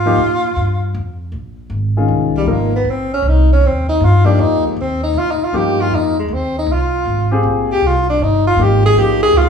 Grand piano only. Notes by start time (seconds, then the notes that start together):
0.05 F3 A#3 D#4 G4
1.97 D#3 G#3 C#4 F4
2.47 F3 A#3 D#4 A#4
4.25 F3 A#3 D#4 G4
5.53 F3 A#3 D#4 G4
7.31 C4 F4 G4 G#4
8.58 F3 A#3 D#4 G4
8.97 F3 A#3 D#4 G4